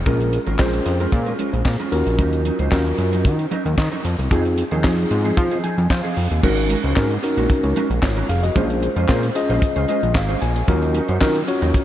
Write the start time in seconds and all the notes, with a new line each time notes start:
0.06 A#1 G#3 C#4 F4 G#4 A#4, kick, closed hi-hat
0.20 muted clean electric guitar stroke, closed hi-hat
0.33 muted clean electric guitar stroke, closed hi-hat
0.47 G#1 G#3 C#4 F4 A#4, closed hi-hat
0.59 A#1 G#3 C#4 F4 G#4 A#4 C5, kick, snare, clap
0.73 muted clean electric guitar stroke, closed hi-hat
0.86 F2, muted clean electric guitar stroke, closed hi-hat
0.99 G#3 C#4 F4 A#4, closed hi-hat
1.12 A#2, muted clean electric guitar stroke, kick, closed hi-hat
1.26 G#3 C#4 F4 A#4, closed hi-hat
1.39 G#3 C#4 F4 A#4, closed hi-hat
1.53 A#1, muted clean electric guitar stroke, closed hi-hat
1.65 A#2, kick, snare, clap
1.79 G#3 C#4 F4 A#4, closed hi-hat
1.92 D#2 C#4 F4 F#4 A#4, muted clean electric guitar stroke, closed hi-hat
2.06 A#1, muted clean electric guitar stroke, closed hi-hat
2.18 D#2 F#3 C#4 D#4 A#4, kick, closed hi-hat
2.33 closed hi-hat
2.45 F#3 C#4 D#4 A#4, closed hi-hat
2.59 C#2 F#3 C#4 D#4 C5, closed hi-hat
2.71 D#2 F#3 C#4 D#4 F4 F#4 A#4, kick, snare, clap
2.85 muted clean electric guitar stroke, closed hi-hat
2.98 F#2, muted clean electric guitar stroke, closed hi-hat
3.12 F#3 C#4 D#4 A#4, closed hi-hat
3.25 D#3, muted clean electric guitar stroke, kick, closed hi-hat
3.39 muted clean electric guitar stroke, closed hi-hat
3.51 F#3 C#4 D#4 A#4, closed hi-hat
3.65 D#2, muted clean electric guitar stroke, closed hi-hat
3.78 D#3, muted clean electric guitar stroke, kick, snare, clap
3.91 F#3 C#4 D#4 A#4, closed hi-hat
4.04 F2, muted clean electric guitar stroke, closed hi-hat
4.18 C2, muted clean electric guitar stroke, closed hi-hat
4.31 F2 F3 C4 D#4 F4 G#4, kick, closed hi-hat
4.45 muted clean electric guitar stroke, closed hi-hat
4.57 muted clean electric guitar stroke, closed hi-hat
4.71 D#2 F3 C4 D#4 G#4, closed hi-hat
4.84 F2 F3 C4 D#4 F4 G#4, kick, snare, clap
4.98 muted clean electric guitar stroke, closed hi-hat
5.10 G#2, muted clean electric guitar stroke, closed hi-hat
5.24 F3 C4 D#4 G#4, closed hi-hat
5.37 F3, muted clean electric guitar stroke, kick, closed hi-hat
5.51 F3 C4 D#4 G#4, closed hi-hat
5.63 F3 C4 D#4 G#4 G#5, closed hi-hat
5.77 F2, muted clean electric guitar stroke, closed hi-hat
5.90 F3 F5, muted clean electric guitar stroke, kick, snare, clap
6.04 F3 C4 D#4 G#4, closed hi-hat
6.17 F2, muted clean electric guitar stroke, open hi-hat
6.31 D#2, muted clean electric guitar stroke, closed hi-hat
6.43 G#1 G#3 C#4 D#4 F#4 A#4, kick, crash
6.58 closed hi-hat
6.69 G#3 C#4 F#4 A#4, closed hi-hat
6.84 C#2 G#3 C#4 F#4 C5, closed hi-hat
6.96 G#2 G#3 C#4 D#4 F#4 A#4, kick, snare, clap
7.10 muted clean electric guitar stroke, closed hi-hat
7.23 C#4 D#4 F#4 A#4, muted clean electric guitar stroke, closed hi-hat
7.37 A#1 G#3 C#4 F#4 A#4, closed hi-hat
7.50 muted clean electric guitar stroke, kick, closed hi-hat
7.64 C#2, muted clean electric guitar stroke, closed hi-hat
7.76 G#3 C#4 F#4 A#4, closed hi-hat
7.90 A#1, muted clean electric guitar stroke, closed hi-hat
8.02 G#1 F4 C#5, muted clean electric guitar stroke, kick, snare, clap
8.16 G#3 C#4 F#4 A#4, closed hi-hat
8.29 F1 G#4 F5, muted clean electric guitar stroke, closed hi-hat
8.43 F#4 D#5, muted clean electric guitar stroke, closed hi-hat
8.55 A#1 G#3 C#4 F4 G#4 C5, kick, closed hi-hat
8.70 muted clean electric guitar stroke, closed hi-hat
8.82 muted clean electric guitar stroke, closed hi-hat
8.96 F2 G#3 C#4 F4 C5, closed hi-hat
9.09 A#2 C#4 F4 G#4 C5, kick, snare, clap
9.23 muted clean electric guitar stroke, closed hi-hat
9.35 C#4 F4 G#4 D#5, muted clean electric guitar stroke, closed hi-hat
9.49 A#1 G#3 C#4 F4 C5, closed hi-hat
9.62 muted clean electric guitar stroke, kick, closed hi-hat
9.76 C#2 G#3 C#4 F4 C5, closed hi-hat
9.88 G#3 C#4 F4 C5 D#5, closed hi-hat
10.02 A#1, muted clean electric guitar stroke, closed hi-hat
10.15 G#1 F5, muted clean electric guitar stroke, kick, snare, clap
10.29 G#3 C#4 F4 C5, closed hi-hat
10.41 A#1 G#5, muted clean electric guitar stroke, closed hi-hat
10.55 muted clean electric guitar stroke, closed hi-hat
10.68 D#2 F#3 C#4 D#4 F4 F#4 A#4, kick, closed hi-hat
10.82 closed hi-hat
10.94 F#3 C#4 D#4 A#4, closed hi-hat
11.08 F#2 F#3 C#4 D#4 C5, closed hi-hat
11.21 D#3 F#3 C#4 D#4 F4 F#4 A#4, kick, snare, clap
11.35 muted clean electric guitar stroke, closed hi-hat
11.47 C#4 F4 F#4 C#5, muted clean electric guitar stroke, closed hi-hat
11.61 D#2 F#3 C#4 D#4 A#4, closed hi-hat
11.74 muted clean electric guitar stroke, kick, closed hi-hat